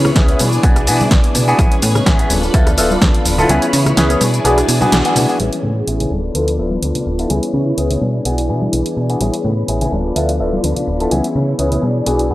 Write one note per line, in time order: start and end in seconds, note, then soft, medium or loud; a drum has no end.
0.00 0.11 C#3 loud
0.00 0.14 E3 medium
0.00 0.15 B3 medium
0.00 0.16 C#4 medium
0.00 1.57 E4 medium
0.00 0.17 G#4 medium
0.00 0.39 C#5 medium
0.00 0.39 B5 medium
0.05 cross-stick medium
0.05 tambourine soft
0.05 low conga medium
0.05 shaker soft
0.15 0.35 C#2 medium
0.15 0.37 E3 medium
0.15 0.26 B3 medium
0.15 0.39 B3 medium
0.15 0.26 C#4 medium
0.15 0.40 C#4 loud
0.15 0.26 E4 medium
0.15 0.26 G#4 medium
0.15 0.41 G#4 loud
0.15 kick loud
0.15 snare loud
0.15 closed hi-hat medium
0.15 shaker soft
0.28 0.38 B3 medium
0.28 0.39 C#4 medium
0.28 0.39 E4 medium
0.28 0.39 G#4 medium
0.28 closed hi-hat medium
0.39 0.59 B2 medium
0.39 0.52 E3 medium
0.39 0.53 B3 medium
0.39 0.53 D4 medium
0.39 0.51 G#4 medium
0.39 1.58 D5 medium
0.39 1.58 G#5 medium
0.39 open hi-hat medium
0.39 tambourine loud
0.39 high conga medium
0.39 shaker medium
0.52 0.78 B3 medium
0.52 0.76 D4 medium
0.52 0.74 G#4 medium
0.52 tambourine medium
0.52 shaker soft
0.63 0.89 B1 medium
0.63 0.76 B3 medium
0.63 0.76 D4 medium
0.63 0.77 F#4 medium
0.63 0.77 G#4 loud
0.63 kick loud
0.63 closed hi-hat medium
0.63 shaker soft
0.76 0.87 B3 soft
0.76 0.88 D4 medium
0.76 0.87 G#4 medium
0.76 cross-stick medium
0.76 closed hi-hat medium
0.76 shaker soft
0.86 1.06 B2 medium
0.86 1.00 E3 medium
0.86 1.00 B3 medium
0.86 1.00 D4 medium
0.86 1.01 F#4 medium
0.86 1.01 G#4 medium
0.86 0.98 G#4 medium
0.86 open hi-hat loud
0.86 tambourine loud
0.86 shaker medium
0.99 1.10 B3 soft
0.99 1.11 D4 medium
0.99 1.11 G#4 medium
0.99 tambourine soft
0.99 high conga medium
0.99 low conga medium
0.99 shaker soft
1.11 1.21 B1 medium
1.11 1.33 E3 medium
1.11 1.34 B3 loud
1.11 1.35 D4 loud
1.11 1.36 G#4 loud
1.11 kick loud
1.11 snare loud
1.11 closed hi-hat medium
1.11 shaker soft
1.24 closed hi-hat medium
1.34 1.54 B2 medium
1.34 1.57 E3 medium
1.34 1.58 B3 medium
1.34 1.59 D4 medium
1.34 1.59 G#4 medium
1.34 open hi-hat medium
1.34 tambourine medium
1.34 low conga medium
1.34 shaker medium
1.47 1.56 B3 medium
1.47 1.56 D4 medium
1.47 1.56 F#4 medium
1.47 1.57 G#4 loud
1.47 tambourine medium
1.47 shaker soft
1.58 1.69 A1 loud
1.58 1.81 E3 medium
1.58 1.82 B3 medium
1.58 1.83 C#4 loud
1.58 1.72 E4 medium
1.58 2.29 G#4 medium
1.58 1.84 G#4 loud
1.58 2.29 C#5 medium
1.58 4.18 B5 medium
1.58 kick loud
1.58 closed hi-hat medium
1.58 tambourine soft
1.58 high conga medium
1.58 shaker soft
1.72 closed hi-hat medium
1.82 2.02 A2 loud
1.82 2.05 E3 medium
1.82 2.06 B3 medium
1.82 2.06 C#4 medium
1.82 2.07 G#4 medium
1.82 open hi-hat loud
1.82 tambourine medium
1.82 shaker medium
1.95 cross-stick medium
1.95 tambourine medium
1.95 low conga medium
1.95 shaker soft
2.06 2.25 A1 medium
2.06 2.29 E3 medium
2.06 2.16 B3 medium
2.06 2.16 C#4 medium
2.06 2.31 C#4 loud
2.06 2.16 E4 medium
2.06 2.16 G#4 medium
2.06 2.31 G#4 loud
2.06 kick loud
2.06 snare loud
2.06 closed hi-hat medium
2.06 tambourine soft
2.06 shaker soft
2.19 2.29 B3 medium
2.19 2.29 C#4 medium
2.19 2.29 E4 medium
2.19 2.29 G#4 medium
2.19 closed hi-hat medium
2.29 2.49 D1 medium
2.29 2.43 F3 medium
2.29 2.43 B3 medium
2.29 2.43 D4 medium
2.29 3.48 F4 medium
2.29 2.41 A4 medium
2.29 3.48 D5 medium
2.29 open hi-hat medium
2.29 tambourine loud
2.29 high conga medium
2.29 shaker medium
2.42 2.68 B3 medium
2.42 2.67 D4 medium
2.42 2.65 A4 medium
2.42 tambourine medium
2.42 shaker soft
2.54 2.80 D2 medium
2.54 2.67 B3 loud
2.54 2.67 E4 medium
2.54 2.67 F4 medium
2.54 2.67 A4 loud
2.54 kick loud
2.54 closed hi-hat medium
2.54 shaker soft
2.66 2.77 B3 medium
2.66 2.78 D4 medium
2.66 2.78 A4 medium
2.66 cross-stick medium
2.66 closed hi-hat medium
2.66 shaker soft
2.77 2.97 D1 medium
2.77 2.90 F3 medium
2.77 2.91 B3 medium
2.77 2.91 D4 medium
2.77 2.91 E4 medium
2.77 2.91 F4 medium
2.77 2.91 A4 medium
2.77 2.89 A4 medium
2.77 open hi-hat loud
2.77 tambourine loud
2.77 shaker medium
2.90 3.01 B3 medium
2.90 3.02 D4 medium
2.90 3.01 A4 medium
2.90 tambourine medium
2.90 high conga medium
2.90 shaker soft
3.01 3.12 D2 medium
3.01 3.24 F3 loud
3.01 3.25 B3 loud
3.01 3.26 D4 loud
3.01 3.26 A4 loud
3.01 kick loud
3.01 snare loud
3.01 closed hi-hat medium
3.01 shaker soft
3.14 closed hi-hat medium
3.25 3.45 D1 medium
3.25 3.49 F3 medium
3.25 3.49 B3 medium
3.25 3.50 D4 medium
3.25 3.51 A4 medium
3.25 open hi-hat medium
3.25 tambourine loud
3.25 shaker medium
3.38 3.47 B3 medium
3.38 3.47 E4 medium
3.38 3.47 F4 medium
3.38 3.47 A4 loud
3.38 tambourine medium
3.38 low conga medium
3.38 shaker soft
3.49 3.59 C#2 loud
3.49 3.71 E3 medium
3.49 3.62 B3 medium
3.49 3.73 B3 medium
3.49 3.62 C#4 medium
3.49 4.19 E4 medium
3.49 3.63 E4 medium
3.49 3.74 E4 medium
3.49 3.63 G#4 loud
3.49 3.74 G#4 loud
3.49 4.20 C#5 medium
3.49 closed hi-hat medium
3.49 tambourine soft
3.49 high conga medium
3.49 shaker soft
3.62 closed hi-hat medium
3.62 shaker soft
3.72 3.92 C#3 loud
3.72 3.95 E3 medium
3.72 3.96 B3 medium
3.72 3.97 E4 medium
3.72 3.97 G#4 medium
3.72 open hi-hat loud
3.72 tambourine medium
3.72 shaker medium
3.86 cross-stick medium
3.86 closed hi-hat soft
3.86 tambourine medium
3.86 low conga medium
3.86 shaker soft
3.96 4.16 C#2 medium
3.96 4.20 E3 medium
3.96 4.07 B3 medium
3.96 4.19 B3 medium
3.96 4.07 C#4 medium
3.96 4.07 E4 medium
3.96 4.21 E4 medium
3.96 4.07 G#4 medium
3.96 4.22 G#4 medium
3.96 snare loud
3.96 closed hi-hat medium
3.96 tambourine soft
3.96 shaker soft
4.10 4.19 B3 medium
4.10 4.20 C#4 medium
4.10 4.20 E4 medium
4.10 4.20 G#4 medium
4.10 closed hi-hat medium
4.10 shaker soft
4.20 4.40 B2 medium
4.20 4.33 B3 medium
4.20 4.34 D4 medium
4.20 5.39 E4 medium
4.20 4.31 G#4 medium
4.20 5.39 D5 medium
4.20 5.38 G#5 medium
4.20 open hi-hat medium
4.20 tambourine loud
4.20 high conga medium
4.20 shaker medium
4.33 4.58 D4 medium
4.33 4.55 G#4 medium
4.33 closed hi-hat soft
4.33 tambourine soft
4.33 shaker soft
4.44 4.64 B1 medium
4.44 4.57 B3 medium
4.44 4.58 D4 medium
4.44 4.58 F#4 medium
4.44 4.58 G#4 loud
4.44 closed hi-hat medium
4.44 tambourine soft
4.44 shaker soft
4.56 4.68 D4 medium
4.56 4.68 G#4 medium
4.56 cross-stick medium
4.56 closed hi-hat medium
4.56 shaker soft
4.67 4.87 B2 medium
4.67 4.81 B3 medium
4.67 4.82 D4 medium
4.67 4.79 G#4 medium
4.67 open hi-hat loud
4.67 tambourine medium
4.67 shaker medium
4.80 5.00 B3 medium
4.80 5.00 D4 medium
4.80 4.91 D4 medium
4.80 5.00 F#4 medium
4.80 4.92 G#4 medium
4.80 5.00 G#4 loud
4.80 tambourine medium
4.80 high conga medium
4.80 low conga medium
4.80 shaker soft
4.91 5.02 B1 medium
4.91 5.14 B3 medium
4.91 5.16 D4 medium
4.91 5.17 G#4 loud
4.91 snare loud
4.91 closed hi-hat medium
4.91 tambourine soft
4.91 shaker soft
5.05 5.26 B3 medium
5.05 5.26 D4 medium
5.05 5.26 F#4 medium
5.05 5.26 G#4 medium
5.05 closed hi-hat medium
5.15 5.26 B2 medium
5.15 5.39 B3 medium
5.15 5.40 D4 medium
5.15 5.40 G#4 medium
5.15 open hi-hat medium
5.15 tambourine loud
5.15 low conga medium
5.15 shaker medium
5.28 5.38 B3 medium
5.28 5.38 D4 medium
5.28 5.38 F#4 medium
5.28 5.38 G#4 medium
5.28 tambourine medium
5.28 shaker soft
5.39 5.50 A1 medium
5.39 6.11 E3 medium
5.39 5.53 B3 medium
5.39 6.13 B3 medium
5.39 5.53 C#4 medium
5.39 6.11 C#4 medium
5.39 5.53 E4 medium
5.39 6.11 G#4 medium
5.39 5.53 G#4 loud
5.39 6.10 G#4 loud
5.39 6.11 C#5 medium
5.39 7.99 B5 medium
5.39 closed hi-hat medium
5.39 tambourine soft
5.39 high conga medium
5.53 closed hi-hat medium
5.63 5.83 A2 medium
5.63 tambourine medium
5.63 low conga medium
5.77 tambourine soft
5.87 6.06 A1 medium
5.87 5.97 B3 medium
5.87 5.97 C#4 medium
5.87 5.97 E4 medium
5.87 5.97 G#4 medium
5.87 closed hi-hat medium
6.00 6.10 B3 medium
6.00 6.10 C#4 medium
6.00 6.10 E4 medium
6.00 6.10 G#4 medium
6.00 closed hi-hat soft
6.00 low conga medium
6.10 6.30 D1 medium
6.10 6.34 B3 soft
6.10 6.35 D4 soft
6.10 7.29 F4 medium
6.10 6.34 A4 medium
6.10 7.29 D5 medium
6.10 tambourine medium
6.10 high conga medium
6.34 6.60 D2 medium
6.34 6.80 F3 medium
6.34 6.48 B3 medium
6.34 6.83 B3 medium
6.34 6.83 D4 medium
6.34 6.48 E4 medium
6.34 6.48 F4 medium
6.34 6.48 A4 loud
6.34 6.84 A4 medium
6.34 closed hi-hat medium
6.48 closed hi-hat medium
6.58 6.78 D1 loud
6.58 6.72 B3 medium
6.58 6.72 E4 medium
6.58 6.72 F4 medium
6.58 6.72 A4 medium
6.71 tambourine medium
6.71 high conga medium
6.82 6.93 D2 medium
6.82 7.29 F3 medium
6.82 7.30 B3 medium
6.82 7.31 D4 medium
6.82 7.31 A4 medium
6.82 closed hi-hat medium
6.95 closed hi-hat medium
6.95 low conga medium
7.06 7.26 D1 medium
7.06 tambourine medium
7.19 7.27 B3 medium
7.19 7.28 E4 medium
7.19 7.28 F4 medium
7.19 7.28 A4 loud
7.19 closed hi-hat soft
7.29 7.40 C#2 medium
7.29 8.01 E3 medium
7.29 7.43 B3 medium
7.29 8.03 B3 medium
7.29 7.43 C#4 medium
7.29 8.02 C#4 medium
7.29 7.43 E4 medium
7.29 8.00 E4 medium
7.29 7.43 G#4 loud
7.29 7.99 G#4 medium
7.29 8.01 C#5 medium
7.29 closed hi-hat medium
7.29 tambourine soft
7.29 high conga medium
7.43 closed hi-hat medium
7.53 7.73 C#3 loud
7.53 tambourine medium
7.53 low conga medium
7.67 tambourine soft
7.78 7.97 C#2 medium
7.78 7.87 B3 medium
7.78 7.88 C#4 medium
7.78 7.88 E4 medium
7.78 7.88 G#4 medium
7.78 closed hi-hat medium
7.90 8.00 B3 medium
7.90 8.00 C#4 medium
7.90 8.00 E4 medium
7.90 8.01 G#4 medium
7.90 closed hi-hat soft
7.90 low conga medium
8.00 8.21 B2 medium
8.00 8.24 B3 soft
8.00 8.25 D4 soft
8.00 9.19 E4 medium
8.00 8.25 G#4 medium
8.00 9.20 D5 medium
8.00 9.20 G#5 medium
8.00 tambourine medium
8.00 high conga medium
8.24 8.51 B1 medium
8.24 8.71 E3 medium
8.24 8.38 B3 medium
8.24 8.73 B3 medium
8.24 8.38 D4 medium
8.24 8.73 D4 medium
8.24 8.38 F#4 medium
8.24 8.39 G#4 loud
8.24 8.74 G#4 medium
8.24 closed hi-hat medium
8.38 closed hi-hat soft
8.49 8.68 B2 loud
8.49 8.62 B3 medium
8.49 8.62 D4 medium
8.49 8.62 F#4 medium
8.49 8.62 G#4 medium
8.62 tambourine medium
8.62 high conga medium
8.72 8.83 B1 medium
8.72 9.19 E3 medium
8.72 9.20 B3 medium
8.72 9.21 D4 medium
8.72 9.21 G#4 medium
8.72 closed hi-hat medium
8.72 tambourine soft
8.86 closed hi-hat soft
8.97 9.16 B2 medium
8.97 tambourine medium
9.09 9.18 B3 medium
9.09 9.18 D4 medium
9.09 9.18 F#4 medium
9.09 9.18 G#4 loud
9.09 closed hi-hat soft
9.20 9.31 A1 medium
9.20 9.92 E3 medium
9.20 9.33 B3 medium
9.20 9.93 B3 medium
9.20 9.34 C#4 medium
9.20 9.92 C#4 medium
9.20 9.34 E4 medium
9.20 9.91 G#4 medium
9.20 9.34 G#4 loud
9.20 9.91 G#4 medium
9.20 9.91 C#5 medium
9.20 9.91 B5 medium
9.20 closed hi-hat medium
9.20 tambourine soft
9.20 high conga medium
9.34 closed hi-hat soft
9.44 9.64 A2 loud
9.44 tambourine medium
9.44 low conga medium
9.57 tambourine soft
9.68 9.87 A1 medium
9.68 9.78 B3 medium
9.68 9.78 C#4 medium
9.68 9.78 E4 medium
9.68 9.78 G#4 medium
9.68 closed hi-hat medium
9.81 9.91 B3 medium
9.81 9.91 C#4 medium
9.81 9.91 E4 medium
9.81 9.91 G#4 medium
9.81 closed hi-hat soft
9.81 low conga medium
9.91 10.11 D1 medium
9.91 10.61 F3 medium
9.91 10.63 B3 medium
9.91 10.64 D4 medium
9.91 11.10 F4 medium
9.91 10.63 A4 medium
9.91 11.10 D5 medium
9.91 11.81 B5 medium
9.91 tambourine medium
9.91 high conga medium
10.16 10.41 D2 medium
10.16 10.29 B3 medium
10.16 10.29 E4 medium
10.16 10.29 F4 medium
10.16 10.29 A4 loud
10.16 closed hi-hat medium
10.16 tambourine soft
10.29 closed hi-hat soft
10.40 10.59 D1 loud
10.40 10.53 B3 medium
10.40 10.53 E4 medium
10.40 10.53 F4 medium
10.40 10.53 A4 medium
10.40 tambourine medium
10.53 tambourine soft
10.53 high conga loud
10.62 10.74 D2 medium
10.62 11.10 F3 medium
10.62 11.11 B3 medium
10.62 11.12 D4 medium
10.62 11.12 A4 medium
10.62 closed hi-hat medium
10.76 closed hi-hat soft
10.76 low conga medium
10.87 11.07 D1 medium
10.87 tambourine medium
11.00 11.08 B3 medium
11.00 11.09 E4 medium
11.00 11.09 F4 medium
11.00 11.09 A4 loud
11.00 closed hi-hat soft
11.11 11.21 C#2 medium
11.11 11.82 E3 medium
11.11 11.24 B3 medium
11.11 12.05 B3 medium
11.11 11.24 C#4 medium
11.11 11.82 E4 medium
11.11 11.24 E4 medium
11.11 11.83 E4 medium
11.11 11.24 G#4 medium
11.11 11.81 G#4 loud
11.11 11.82 C#5 medium
11.11 closed hi-hat medium
11.11 tambourine soft
11.11 high conga medium
11.24 closed hi-hat soft
11.35 11.54 C#3 medium
11.35 tambourine medium
11.35 low conga medium
11.49 tambourine soft
11.58 11.78 C#2 medium
11.58 11.68 B3 medium
11.58 11.69 C#4 medium
11.58 11.69 E4 medium
11.58 11.69 G#4 medium
11.58 closed hi-hat medium
11.71 11.81 B3 medium
11.71 11.81 C#4 medium
11.71 11.82 E4 medium
11.71 11.82 G#4 medium
11.71 closed hi-hat soft
11.71 low conga medium
11.82 12.02 B2 medium
11.82 12.06 D4 soft
11.82 12.34 E4 medium
11.82 12.06 G#4 medium
11.82 12.34 D5 medium
11.82 12.34 G#5 medium
11.82 tambourine medium
11.82 high conga medium
11.96 tambourine soft
12.06 12.32 B1 medium
12.06 12.34 B3 medium
12.06 12.19 B3 medium
12.06 12.19 D4 medium
12.06 12.34 D4 medium
12.06 12.20 F#4 medium
12.06 12.20 G#4 loud
12.06 12.34 G#4 medium
12.06 closed hi-hat medium
12.06 tambourine soft
12.19 closed hi-hat soft
12.30 12.34 B2 loud
12.30 12.34 B3 medium
12.30 12.34 D4 medium
12.30 12.34 F#4 medium
12.30 12.34 G#4 medium
12.30 tambourine medium